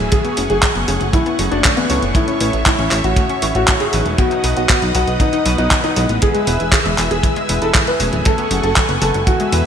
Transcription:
Already playing: F#3 A3 C#4 G#4 G#5
0.12 F#3 A3 G#4 F#5 C#6, kick, closed hi-hat
0.25 B3, closed hi-hat
0.37 F#1 C#3 F#3 A3 C#4 G#4, open hi-hat
0.50 F#1 F#3 G#4, closed hi-hat
0.63 F#3, kick, clap, closed hi-hat
0.75 F#1 B3, closed hi-hat
0.88 F#1 C#3 F#3 A3 C#4 G#4, open hi-hat
1.01 F#1 F#3, closed hi-hat
1.13 F#3 E4, kick, closed hi-hat
1.26 B3, closed hi-hat
1.39 F#1 C#3 F#3 A3 C#4 G#4, open hi-hat
1.51 F#1 F#3 A3 C#4 D4 F#4 G#4, closed hi-hat
1.64 C#4, kick, clap, closed hi-hat
1.77 E3 B3, closed hi-hat
1.90 C#2 A2 F#3 A3 C#4 E4 C#5, open hi-hat
2.02 F#1 F#3, closed hi-hat
2.15 A3 E4 C#5 E5, kick, closed hi-hat
2.28 C#4, closed hi-hat
2.40 A1 A2 E3 A3 C#4 E4 C#5, open hi-hat
2.53 A1 A3, closed hi-hat
2.66 A3 E4, kick, clap, closed hi-hat
2.79 A1 C#4, closed hi-hat
2.91 A1 A2 E3 A3 C#4 E4 C#5, clap, open hi-hat
3.04 A1 A3 F#4, closed hi-hat
3.16 A3, kick, closed hi-hat
3.29 C#4, closed hi-hat
3.42 A1 A2 E3 A3 C#4 E4 C#5, open hi-hat
3.55 A1 A2 A3 C#4 E4 F#4 C#5, closed hi-hat
3.68 A3, kick, clap, closed hi-hat
3.80 C#4 G#4, closed hi-hat
3.93 A1 B2 E3 F#3 B3 D#4 B4, open hi-hat
4.06 E1 A3, closed hi-hat
4.18 B3 F#4 B4 D#5 F#5 D#6, kick, closed hi-hat
4.31 D#4, closed hi-hat
4.44 B1 B2 F#3 B3 D#4 B4, open hi-hat
4.57 B1 B3 F#4, closed hi-hat
4.69 B3, kick, clap, closed hi-hat
4.82 B1 D#4, closed hi-hat
4.95 B1 B2 F#3 B3 D#4 F#4 B4, open hi-hat
5.07 B1 B3, closed hi-hat
5.20 B3 D#4, kick, closed hi-hat
5.33 D#4, closed hi-hat
5.46 B1 B2 F#3 B3 D#4 B4, open hi-hat
5.58 B1 B2 F#3 B3 D#4 B4, closed hi-hat
5.71 B3, kick, clap, closed hi-hat
5.84 D#4, closed hi-hat
5.96 B1 F#3 G#3 B3 E4 B4, open hi-hat
6.09 A1 B3, closed hi-hat
6.22 E3 G#4 E5 G#5 E6, kick, closed hi-hat
6.35 G#3, closed hi-hat
6.47 E1 B2 G#3 B3 E4 B4, open hi-hat
6.60 E1 E3, closed hi-hat
6.72 E3 G#4, kick, clap, closed hi-hat
6.85 E1 G#3, closed hi-hat
6.98 E1 B2 G#3 B3 E4 B4, clap, open hi-hat
7.11 E1 E3 G#4, closed hi-hat
7.23 E3, kick, closed hi-hat
7.36 G#3, closed hi-hat
7.49 E1 B2 G#3 B3 E4 B4, open hi-hat
7.62 E1 E3 G#3 B3 E4 A4 B4, closed hi-hat
7.75 E3, kick, clap, closed hi-hat
7.87 G#3 B4, closed hi-hat
8.00 E1 B2 F#3 A3 C#4 G#4, open hi-hat
8.13 D1 E3, closed hi-hat
8.25 F#3 A4 F#5 C#6, kick, closed hi-hat
8.38 B3, closed hi-hat
8.51 F#1 C#3 F#3 A3 C#4 G#4, open hi-hat
8.63 F#1 F#3 A4, closed hi-hat
8.76 F#3, kick, clap, closed hi-hat
8.89 F#1 B3, closed hi-hat
9.02 F#1 C#3 G#3 B3 E4 A4 B4, open hi-hat
9.14 F#1 F#3, closed hi-hat
9.27 E3 F#4 B4 E5 E6, kick, closed hi-hat
9.40 G#3, closed hi-hat
9.52 E2 B2 G#3 B3 E4 B4, open hi-hat

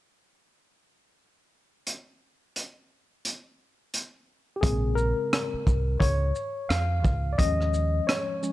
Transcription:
1.87 closed hi-hat
2.56 closed hi-hat
3.25 closed hi-hat
3.94 closed hi-hat
4.56 G4
4.61 A#1 C#3 G#3 C4 G#4, kick, closed hi-hat
4.95 A#4, shaker
5.33 cross-stick, closed hi-hat
5.54 muted fingered electric bass stroke
5.67 C2, kick, shaker
6.00 C#2 C#5, kick, closed hi-hat
6.35 shaker
6.69 F2 F5, cross-stick, closed hi-hat
7.04 C#2, kick, shaker
7.33 D5
7.38 D#2 F3 G#3 C#4 D#5, kick, closed hi-hat
7.61 cross-stick
7.74 shaker
8.07 C#5, cross-stick, closed hi-hat
8.42 F3 G#3 C#4, shaker

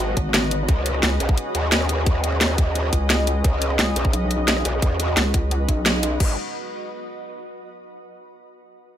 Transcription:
Already playing: G#1 G#3 D#4 F#4 B4 D#5
0.17 G#1, kick, closed hi-hat
0.34 snare, closed hi-hat
0.51 closed hi-hat
0.69 C#2 C#4 G#4 D#5, kick, closed hi-hat
0.86 closed hi-hat
0.94 cross-stick
1.03 C#2, snare, closed hi-hat
1.20 B1, closed hi-hat
1.29 kick
1.38 closed hi-hat
1.55 D#2, closed hi-hat
1.72 snare, closed hi-hat
1.81 cross-stick
1.89 closed hi-hat
2.06 kick, closed hi-hat
2.24 closed hi-hat
2.32 cross-stick
2.41 snare, closed hi-hat
2.58 kick, closed hi-hat
2.75 closed hi-hat
2.93 C#2, kick, closed hi-hat
3.10 snare, closed hi-hat
3.27 closed hi-hat
3.44 C#2, kick, closed hi-hat
3.62 closed hi-hat
3.70 cross-stick
3.79 C#2, snare, closed hi-hat
3.96 B1, closed hi-hat
4.05 kick
4.13 B1, closed hi-hat
4.31 closed hi-hat
4.48 snare, closed hi-hat
4.57 cross-stick
4.65 B1, closed hi-hat
4.82 E2, kick, closed hi-hat
5.00 closed hi-hat
5.08 cross-stick
5.17 C#2, snare, closed hi-hat
5.34 kick, closed hi-hat
5.51 closed hi-hat
5.69 B1, kick, closed hi-hat
5.86 snare, closed hi-hat
6.03 closed hi-hat
6.20 G#1 G#3 D#4 F#4 G#4, kick, crash
6.25 B4
6.31 D#5

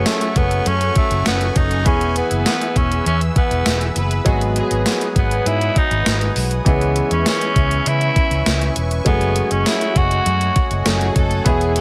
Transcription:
Already playing: F#3 A3 C#4 G#4 A4 F#5 G#5 C#6
0.06 A3, snare, closed hi-hat, tambourine
0.21 closed hi-hat
0.36 F#1 B3, kick, closed hi-hat
0.51 closed hi-hat
0.66 F#2 C#4, closed hi-hat
0.81 closed hi-hat
0.96 A3, kick, closed hi-hat
1.11 F#1, closed hi-hat
1.26 F#1 B3, snare, closed hi-hat, tambourine
1.41 closed hi-hat
1.56 F#1 D#4, kick, closed hi-hat
1.71 closed hi-hat
1.84 E1 E3 B3 C#4 E4 G#4 B4 E5 E6, kick, closed hi-hat
2.01 closed hi-hat
2.16 B3, closed hi-hat
2.31 F#1, closed hi-hat
2.46 B3, snare, closed hi-hat, tambourine
2.62 closed hi-hat
2.76 E1 C#4, kick, closed hi-hat
2.92 closed hi-hat
3.06 E2 C#4, closed hi-hat
3.21 closed hi-hat
3.36 B3, kick, closed hi-hat
3.51 E1, closed hi-hat
3.66 E1, snare, closed hi-hat, tambourine
3.81 closed hi-hat
3.96 F#1 B4, closed hi-hat
4.11 closed hi-hat
4.25 G#1 F#3 G#3 B3 F#4 G#4 B4 D#5 F#5 G#5 D#6, kick, closed hi-hat
4.41 closed hi-hat
4.56 G#4, closed hi-hat
4.71 G#1, closed hi-hat
4.86 snare, closed hi-hat, tambourine
5.01 closed hi-hat
5.16 G#1 B3, kick, closed hi-hat
5.31 closed hi-hat
5.46 G#2 E4, closed hi-hat
5.61 closed hi-hat
5.76 D#4, kick, closed hi-hat
5.91 G#1, closed hi-hat
6.06 G#1, snare, closed hi-hat, tambourine
6.21 closed hi-hat
6.36 B1, open hi-hat
6.51 closed hi-hat
6.65 C#2 E3 G#3 B3 C#4 G#4 B4 E5 G#5 C#6, kick, closed hi-hat
6.81 closed hi-hat
6.96 closed hi-hat
7.11 E2 C#4, closed hi-hat
7.26 C#4, snare, closed hi-hat, tambourine
7.41 closed hi-hat
7.56 C#2, kick, closed hi-hat
7.71 closed hi-hat
7.86 C#3 E4, closed hi-hat
8.01 closed hi-hat
8.16 kick, closed hi-hat
8.31 C#2, closed hi-hat
8.46 C#2, snare, closed hi-hat, tambourine
8.61 closed hi-hat
8.76 E1, closed hi-hat
8.91 closed hi-hat
9.05 F#1 F#3 G#3 A3 B3 C#4 F#4 G#4 D#5 F#5 G#5, kick, closed hi-hat
9.21 closed hi-hat
9.36 closed hi-hat
9.51 F#1 C#4, closed hi-hat
9.66 E4, snare, closed hi-hat, tambourine
9.81 closed hi-hat
9.96 F#1 F#4, kick, closed hi-hat
10.11 closed hi-hat
10.26 F#2, closed hi-hat
10.41 closed hi-hat
10.56 kick, closed hi-hat
10.71 F#1, closed hi-hat
10.85 F#1 F#3 A3 C#4 G#4 G#5, snare, closed hi-hat, tambourine
11.01 closed hi-hat
11.16 F#1 A4, kick, closed hi-hat
11.31 closed hi-hat
11.45 E1 G#3 B3 E4 G#4 B4 C#5 E5 E6, kick, closed hi-hat
11.61 closed hi-hat
11.76 G#4, closed hi-hat

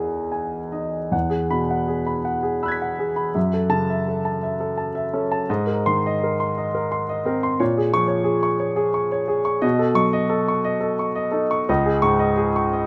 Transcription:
Already playing: E2 D#4 G#4 A#4 G#5
0.32 G#5
0.72 D#4 D#5
1.12 E2 F#5
1.30 G#4
1.51 B2 B5
1.71 F#5
1.88 G#4
2.06 B5
2.25 F#5
2.43 G#4
2.63 B5 E6 F#6
2.68 G#6 B6
2.82 F#5
2.99 G#4
3.16 B5
3.35 F#2 E5
3.53 A4
3.69 C#3 A5
3.90 E5
4.08 A4
4.25 A5
4.43 E5
4.60 A4
4.78 A5
4.95 E5
5.13 C#4 A4
5.32 A5
5.49 G#2 D#5
5.67 A#4
5.86 D#3 C6
6.06 D#5
6.24 A#4
6.40 C6
6.58 D#5
6.75 A#4
6.92 C6
7.09 D#5
7.25 C4 A#4
7.43 C6
7.60 A#2 C#5
7.77 G#4
7.93 F3 C#6
8.08 C#5
8.24 G#4
8.43 C#6
8.59 C#5
8.76 G#4
8.94 C#6
9.12 C#5
9.28 G#4
9.45 C#6
9.62 B2 D#5
9.79 A4
9.95 F#3 C#6
10.13 D#5
10.29 A4
10.48 C#6
10.64 D#5
10.80 A4
10.99 C#6
11.15 D#5
11.31 D#4 A4
11.51 C#6
11.69 C#2 D#5
11.86 G#4
12.02 G#2 C#6
12.19 D#5
12.37 G#4
12.56 C#6
12.73 D#5

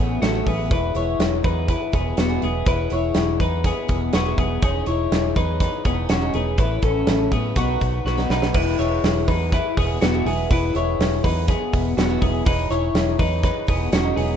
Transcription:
Already playing: A3 B3 C#4 G#4
0.00 A1 B3 C#4 E4 A4 B4
0.22 A1 A3 C#4 F#4 A4 B4, snare, closed hi-hat
0.34 A2 A3 B3 C#4 E4
0.46 A1 B3 C#4 G#4 A4 B4, kick, open hi-hat
0.71 E1 G#3 B3 E4 G#4 B4, kick, closed hi-hat
0.94 E1 G#3 B3 E4 G#4 B4 C#5, closed hi-hat
1.19 E1 E4 G#4 B4, snare, closed hi-hat
1.43 E2 G#3 B3 D#4 E4 G#4 B4 C#5, kick, closed hi-hat
1.68 E4 G#4 B4, kick, closed hi-hat
1.92 E1 G#3 B3 E4 G#4 B4, kick, closed hi-hat
2.17 E1 B3 E4 F#4 G#4 B4, snare, closed hi-hat
2.29 E2 E3 G#3 B3 E4 G#4
2.42 E1 B3 E4 G#4 B4, closed hi-hat
2.65 E1 G#3 B3 E4 G#4 B4, kick, closed hi-hat
2.90 E1 G#3 B3 E4 G#4 B4 C#5, closed hi-hat
3.14 E1 E4 G#4 B4, snare, closed hi-hat
3.40 E2 G#3 B3 D#4 E4 G#4 B4, kick, closed hi-hat
3.64 B3 E4 G#4 B4, kick, snare, closed hi-hat
3.88 E1 G#3 B3 E4 G#4 B4, kick, closed hi-hat
4.13 E1 B3 E4 F#4 G#4 B4, snare, closed hi-hat
4.25 E2 E3 G#3 B3 E4 G#4
4.38 E1 B3 E4 G#4 B4, kick, closed hi-hat
4.62 E1 G#3 C#4 D#4 E4 G#4 C#5, kick, closed hi-hat
4.86 E1 G#3 C#4 D#4 E4 G#4 C#5, closed hi-hat
5.11 E1 D#4 E4 C#5, snare, closed hi-hat
5.36 E2 G#3 C#4 D#4 E4 G#4 B4 C#5, kick, closed hi-hat
5.60 D#4 E4 B4 C#5, kick, snare, closed hi-hat
5.85 E1 G#3 B3 C#4 D#4 E4 G#4 C#5, kick, closed hi-hat
6.09 E1 C#4 D#4 E4 F#4 C#5, snare, closed hi-hat
6.21 E2 E3 G#3 C#4 D#4 G#4
6.34 E1 B3 D#4 E4 G#4 C#5, closed hi-hat
6.58 A1 A3 B3 C#4 E4 A4 B4, kick, closed hi-hat
6.82 A1 A3 B3 C#4 E4 A4 B4, kick, closed hi-hat
7.07 A1 C#4 A4 B4, snare, closed hi-hat
7.32 A2 A3 B3 C#4 E4 G#4 A4, kick, closed hi-hat
7.56 B1 B2 D#3 F#3 B3 D#4 F#4 B4, kick, closed hi-hat
7.80 B1 F#3 B3 D#4 F#4 B4, kick, closed hi-hat
8.05 B1 B3 D#4 F#4 B4, snare
8.17 B2 D#3 F#3 B3 D#4 B4, snare
8.30 B1 D#4 F#4 B4, snare
8.42 snare
8.54 E1 G#3 B3 E4 G#4 B4, kick, crash
8.78 E1 G#3 B3 E4 G#4 B4 C#5, hi-hat pedal, open hi-hat
9.04 E1 E4 G#4 B4, snare, hi-hat pedal, open hi-hat
9.28 E2 G#3 B3 D#4 E4 G#4 B4, kick, hi-hat pedal, open hi-hat
9.52 E4 G#4 B4, kick, snare, hi-hat pedal, open hi-hat
9.76 E1 G#3 B3 E4 G#4 B4, kick, hi-hat pedal, open hi-hat
10.00 E1 B3 E4 F#4 G#4 B4, snare, hi-hat pedal, open hi-hat
10.14 E2 E3 G#3 B3 E4 G#4
10.25 E1 B3 E4 G#4 B4, hi-hat pedal, open hi-hat
10.50 E1 G#3 B3 E4 G#4 B4, kick, hi-hat pedal, open hi-hat
10.73 E1 G#3 B3 E4 G#4 B4 C#5, hi-hat pedal, open hi-hat
10.99 E1 E4 G#4 B4, snare, hi-hat pedal, open hi-hat
11.24 E2 G#3 B3 D#4 E4 G#4 B4, kick, hi-hat pedal, open hi-hat
11.48 B3 E4 G#4 B4, kick, snare, hi-hat pedal, open hi-hat
11.73 E1 G#3 B3 E4 G#4 B4, kick, hi-hat pedal, open hi-hat
11.97 E1 B3 E4 F#4 G#4 C#5 F#5, snare, hi-hat pedal, open hi-hat
12.09 E2 E3 G#3 B3 E4 G#4
12.21 E1 B3 E4 G#4 B4 G#5, kick, hi-hat pedal, open hi-hat
12.45 E1 G#3 C#4 D#4 E4 G#4 B4 C#5, kick, hi-hat pedal, open hi-hat
12.70 E1 G#3 C#4 D#4 E4 G#4 C#5, hi-hat pedal, open hi-hat
12.94 E1 D#4 E4 C#5, snare, hi-hat pedal, open hi-hat
13.19 E2 G#3 C#4 D#4 E4 G#4 B4 C#5, kick, hi-hat pedal, open hi-hat
13.43 D#4 E4 B4 C#5, kick, snare, hi-hat pedal, open hi-hat
13.67 E1 G#3 B3 C#4 D#4 E4 G#4 C#5, kick, hi-hat pedal, open hi-hat
13.92 E1 C#4 D#4 E4 F#4 C#5, snare, hi-hat pedal, open hi-hat
14.03 E2 E3 G#3 C#4 D#4 G#4
14.16 E1 B3 D#4 E4 G#4 C#5, hi-hat pedal, open hi-hat

